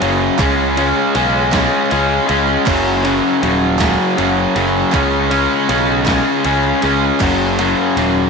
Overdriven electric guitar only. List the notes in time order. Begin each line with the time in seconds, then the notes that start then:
Already playing: C#4
0.00 F#2 C#3 F#3
0.39 C#3 G#3 C#4
0.76 C#3 G#3 C#4
1.16 C#3 G#3 C#4
1.53 C#3 G#3 C#4
1.90 C#3 G#3 C#4
2.27 C#3 G#3 C#4
2.66 F#2 C#3 F#3
3.03 F#2 C#3 F#3
3.42 F#2 C#3 F#3
3.79 F#2 C#3 F#3
4.16 F#2 C#3 F#3
4.56 F#2 C#3 F#3
4.92 C#3 G#3 C#4
5.30 C#3 G#3 C#4
5.69 C#3 G#3 C#4
6.06 C#3 G#3 C#4
6.45 C#3 G#3 C#4
6.82 C#3 G#3 C#4
7.21 F#2 C#3 F#3
7.59 F#2 C#3 F#3
7.98 F#2 C#3 F#3